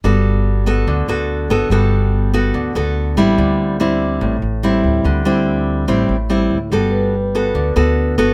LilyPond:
<<
  \new Staff \with { instrumentName = "Vibraphone" } { \time 4/4 \key g \major \tempo 4 = 144 r1 | r1 | r1 | r1 |
r8 b'2~ b'8 r4 | }
  \new Staff \with { instrumentName = "Nylon-string guitar" } { \time 4/4 \key g \major << { <b fis' a'>4. <b fis' a'>4 <b fis' a'>4 <b fis' a'>8 | <b fis' a'>4. <b fis' a'>4 <b fis' a'>4 <g c' e'>8~ | <g c' e'>4 <g c' e'>4. r8 <g c' e'>4~ | <g c' e'>8 <g c' e'>4. <g c' e'>8 r8 <g c' e'>8 r8 |
<b fis' a'>4 r8 <b fis' a'>4 <b fis' a'>4 <b fis' a'>8 | } \\ { g2 d2 | g2 d2 | d2 a,2 | d2 a,2 |
g2 d2 | } >> }
  \new Staff \with { instrumentName = "Upright bass" } { \clef bass \time 4/4 \key g \major g,,2 d,8 d,4 g,,8 | g,,2 d,8 d,4 a,,8 | d,2 a,,8 a,,4 d,8 | d,2 a,,8 a,,4 d,8 |
g,,2 d,8 d,4 g,,8 | }
>>